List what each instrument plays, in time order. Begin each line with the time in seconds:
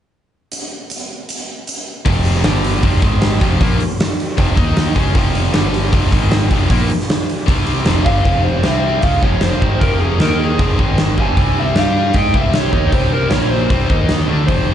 0.52 closed hi-hat
0.90 closed hi-hat
1.29 closed hi-hat
1.67 closed hi-hat
2.05 picked electric bass F1, distorted electric guitar F2 C3 F3, kick, open hi-hat
2.25 open hi-hat
2.35 snare
2.44 picked electric bass G1, distorted electric guitar G2 D3 G3, snare, open hi-hat
2.64 open hi-hat
2.82 picked electric bass F1, distorted electric guitar F2 C3 F3, kick, open hi-hat
3.01 picked electric bass G#1, distorted electric guitar G#2 D#3 G#3, kick, open hi-hat
3.22 snare, open hi-hat
3.40 picked electric bass F1, distorted electric guitar F2 C3 F3, kick, open hi-hat
3.60 picked electric bass A#1, distorted electric guitar A#2 F3 A#3, kick, open hi-hat
3.80 open hi-hat
4.00 snare, open hi-hat
4.20 open hi-hat
4.37 picked electric bass F1, distorted electric guitar F2 C3 F3, kick, open hi-hat
4.56 picked electric bass D#2, distorted electric guitar D#3 A#3 D#4, kick, open hi-hat
4.77 snare, open hi-hat
4.94 picked electric bass C#2, distorted electric guitar C#3 G#3 C#4, kick, open hi-hat
5.14 picked electric bass F1, distorted electric guitar F2 C3 F3, kick, open hi-hat
5.35 open hi-hat
5.53 picked electric bass G1, distorted electric guitar G2 D3 G3, snare, open hi-hat
5.74 open hi-hat
5.91 picked electric bass F1, distorted electric guitar F2 C3 F3, kick, open hi-hat
6.12 picked electric bass G#1, distorted electric guitar G#2 D#3 G#3, kick, open hi-hat
6.31 snare, open hi-hat
6.51 picked electric bass F1, distorted electric guitar F2 C3 F3, kick, open hi-hat
6.70 picked electric bass A#1, distorted electric guitar A#2 F3 A#3, kick, open hi-hat
6.90 open hi-hat
7.01 snare
7.10 snare, open hi-hat
7.30 open hi-hat
7.46 picked electric bass C2, distorted electric guitar C3 G3 C4, kick, open hi-hat
7.67 open hi-hat
7.86 picked electric bass F1, distorted electric guitar F2 C3 F3, snare, open hi-hat
8.05 picked electric bass G1, distorted electric guitar G2 D3 G3, lead electric guitar F5, kick, open hi-hat
8.25 picked electric bass F1, distorted electric guitar F2 C3 F3, kick, open hi-hat
8.44 lead electric guitar C5
8.63 picked electric bass C2, distorted electric guitar C3 G3 C4, lead electric guitar E5, snare, open hi-hat
9.02 picked electric bass C#2, distorted electric guitar C#3 G#3 C#4, lead electric guitar F5, kick, open hi-hat
9.22 picked electric bass F1, distorted electric guitar F2 C3 F3, lead electric guitar C#5, kick
9.41 lead electric guitar C5, snare, open hi-hat
9.62 picked electric bass G#1, distorted electric guitar G#2 D#3 G#3, kick
9.80 picked electric bass F1, distorted electric guitar F2 C3 F3, lead electric guitar A#4, kick, open hi-hat
9.99 lead electric guitar G#4
10.20 picked electric bass D#2, distorted electric guitar D#3 A#3 D#4, lead electric guitar A#4, snare, open hi-hat
10.39 lead electric guitar G#4
10.59 picked electric bass F1, distorted electric guitar F2 C3 F3, kick, open hi-hat
10.79 picked electric bass G#1, distorted electric guitar G#2 D#3 G#3, kick
10.98 snare, open hi-hat
11.18 picked electric bass G1, distorted electric guitar G2 D3 G3, lead electric guitar G#5, kick
11.37 picked electric bass C2, distorted electric guitar C3 G3 C4, kick, open hi-hat
11.60 lead electric guitar E5
11.75 picked electric bass G2, distorted electric guitar G3 D4 G4, lead electric guitar F5, snare, open hi-hat
12.14 picked electric bass G#2, distorted electric guitar G#3 D#4 G#4, lead electric guitar G5, kick, open hi-hat
12.34 picked electric bass C2, distorted electric guitar C3 G3 C4, lead electric guitar E5, kick
12.53 lead electric guitar C#5, snare, open hi-hat
12.72 picked electric bass D#2, distorted electric guitar D#3 A#3 D#4, kick
12.92 picked electric bass C2, distorted electric guitar C3 G3 C4, lead electric guitar C5, kick, open hi-hat
13.13 lead electric guitar A#4
13.30 picked electric bass A#1, distorted electric guitar A#2 F3 A#3, lead electric guitar C#5, snare, open hi-hat
13.50 lead electric guitar C5
13.70 picked electric bass C2, distorted electric guitar C3 G3 C4, kick, open hi-hat
13.89 picked electric bass D#2, distorted electric guitar D#3 A#3 D#4, kick
14.09 snare, open hi-hat
14.28 picked electric bass D2, distorted electric guitar D3 A3 D4, high tom
14.47 picked electric bass F1, distorted electric guitar F2 C3 F3, lead electric guitar C5, kick, open hi-hat